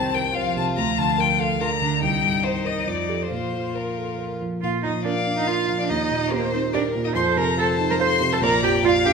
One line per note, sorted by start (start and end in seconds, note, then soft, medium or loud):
0.00 0.73 C2 medium
0.00 0.57 C3 soft
0.00 0.14 D#3 medium
0.00 0.34 C4 medium
0.00 0.26 C5 soft
0.00 0.16 A5 medium
0.14 0.23 D#3 soft
0.14 0.35 A#4 soft
0.14 0.36 G5 medium
0.34 0.76 F3 soft
0.34 1.58 F4 soft
0.34 0.69 C5 soft
0.34 0.55 F5 medium
0.57 0.77 C3 soft
0.57 0.65 A5 medium
0.77 1.99 D2 soft
0.77 1.62 F3 soft
0.77 1.00 A#5 medium
0.98 1.32 D3 soft
0.98 1.22 A5 medium
1.18 1.52 A#4 soft
1.18 1.41 G5 medium
1.40 1.60 A4 soft
1.40 1.62 F5 medium
1.60 2.46 D3 soft
1.60 1.69 F4 soft
1.60 1.94 A#4 soft
1.60 2.02 A#5 medium
1.81 2.02 D3 soft
1.81 2.01 D4 soft
2.02 2.84 C2 soft
2.02 3.28 D#4 soft
2.02 2.45 G5 medium
2.23 2.57 G2 soft
2.44 2.88 D#3 soft
2.44 2.68 C5 medium
2.44 2.78 C5 soft
2.65 2.86 A#4 soft
2.65 2.89 D#5 soft
2.86 3.29 F2 soft
2.86 3.30 F3 soft
2.86 3.24 D5 soft
3.09 3.29 G4 soft
3.09 3.29 A4 soft
3.23 3.32 C5 soft
3.31 4.58 A#2 soft
3.31 4.39 F3 soft
3.31 4.39 F4 soft
3.31 3.77 C5 soft
3.53 3.88 F3 soft
3.74 4.10 A#4 soft
3.74 4.19 A#4 soft
3.98 4.19 A4 soft
4.19 4.53 A#4 soft
4.41 4.62 F3 soft
4.61 5.86 A#2 soft
4.61 4.81 F4 medium
4.61 4.71 F5 soft
4.83 5.18 F3 soft
4.83 4.91 D#4 medium
4.83 5.05 D#5 soft
5.04 5.12 D4 medium
5.04 5.24 F4 soft
5.04 5.24 A#4 soft
5.04 5.36 D5 soft
5.04 5.92 F5 medium
5.27 5.60 D4 soft
5.37 5.49 D#4 medium
5.37 5.48 D#5 soft
5.47 5.79 F4 medium
5.47 5.67 F4 soft
5.47 5.67 A#4 soft
5.47 5.78 F5 soft
5.68 5.89 F3 soft
5.79 5.91 D4 medium
5.79 5.83 D5 soft
5.87 7.13 D#2 soft
5.87 6.33 D#4 medium
5.87 6.31 D#5 soft
5.87 6.33 D#5 soft
6.11 6.45 A#2 soft
6.30 6.53 A#3 medium
6.30 6.50 G4 soft
6.30 6.51 A#4 soft
6.30 6.75 C5 medium
6.52 6.62 C4 soft
6.52 6.87 D#4 soft
6.52 6.60 C5 soft
6.73 6.82 D4 medium
6.73 6.93 G4 soft
6.73 7.15 A#4 soft
6.73 6.93 A#4 soft
6.73 6.81 D5 medium
6.95 7.16 A#2 soft
7.04 7.17 D#4 medium
7.04 7.09 D#5 soft
7.15 8.38 F2 soft
7.15 7.58 A4 medium
7.15 7.39 C5 medium
7.15 7.23 C6 medium
7.36 7.71 C3 soft
7.36 7.58 A#4 medium
7.36 7.61 A#5 medium
7.57 7.77 F4 soft
7.57 7.77 A4 soft
7.57 7.67 A4 medium
7.57 8.45 C5 medium
7.57 7.91 A5 medium
7.79 8.13 D#4 soft
7.90 7.95 A#4 medium
7.90 7.95 A#5 medium
8.00 8.19 F4 soft
8.00 8.19 A4 soft
8.00 8.08 C5 medium
8.00 8.34 C6 medium
8.21 8.42 C3 soft
8.32 8.37 A4 medium
8.32 8.43 A5 medium
8.41 9.13 A#1 medium
8.41 8.63 A#4 medium
8.41 8.85 D5 medium
8.41 8.66 A#5 medium
8.63 8.97 F2 soft
8.63 8.71 G4 medium
8.63 8.88 G5 medium
8.83 9.03 F4 soft
8.83 8.92 F4 medium
8.83 9.03 D5 soft
8.83 9.13 F5 medium
8.83 9.08 F5 medium
9.05 9.13 D4 soft
9.05 9.13 G4 medium
9.05 9.13 G5 medium